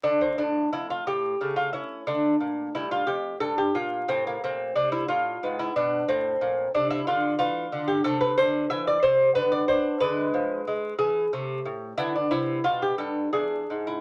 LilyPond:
<<
  \new Staff \with { instrumentName = "Lute" } { \time 3/4 \key d \minor \tempo 4 = 90 d'16 c'16 d'8 e'16 f'16 g'8. f'16 e'8 | d'4 e'16 f'16 g'8 a'16 g'16 f'8 | c'16 bes16 c'8 d'16 e'16 f'8. e'16 d'8 | c'4 d'16 e'16 f'8 f'8. g'16 |
\key a \minor a'16 b'16 c''8 e''16 d''16 c''8 b'16 d''16 c''8 | b'4. gis'8 r4 | e'16 d'16 e'8 f'16 g'16 a'8 gis'8. e'16 | }
  \new Staff \with { instrumentName = "Lute" } { \clef bass \time 3/4 \key d \minor << { a2 a4 | a2. | a2 b4 | a2. |
\key a \minor a2 b4 | gis2 a4 | b2 d'4 | } \\ { d8 a,8 f,8 a,8 cis8 cis'8 | d8 bes,8 g,8 f,8 g,8 bes,8 | a,8 bes,8 c8 a,8 gis,8 b,8 | a,8 bes,8 c8 d8 e8 d8 |
c8 d8 e8 c8 d8 d'8 | d8 f8 gis8 e8 c8 a,8 | d8 c8 b,8 g,8 e,8 gis,8 | } >> }
>>